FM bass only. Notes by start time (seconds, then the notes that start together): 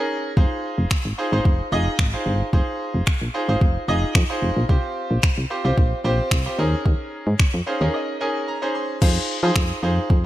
0.37 F1
0.78 F1
1.05 G#1
1.32 G#1
1.45 F1
1.72 F1
1.99 G#1
2.26 G1
2.53 F1
2.94 F1
3.22 A#1
3.49 G#1
3.61 F1
3.88 F1
4.15 F2
4.42 F1
4.57 A#1
4.69 C2
5.11 A#1
5.38 C2
5.65 C2
5.78 A#1
6.04 A#1
6.31 C2
6.58 D#2
6.86 D#2
7.27 G#2
7.54 F2
7.81 D#2
9.02 F2
9.43 F3
9.56 F2
9.83 F2
10.10 F2